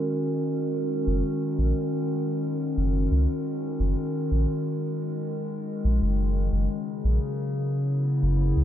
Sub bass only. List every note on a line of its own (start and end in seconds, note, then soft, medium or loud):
1.07 1.22 F#1 loud
1.59 1.73 A#1 medium
2.77 3.08 F#1 medium
3.11 3.27 C#2 medium
3.80 3.95 F#1 loud
4.31 4.46 A#1 medium
5.84 6.00 A#1 medium
6.02 6.49 F#1 medium
6.52 6.68 F#1 loud
7.04 7.19 A#1 medium
8.23 8.53 F#1 medium
8.57 8.64 C#2 medium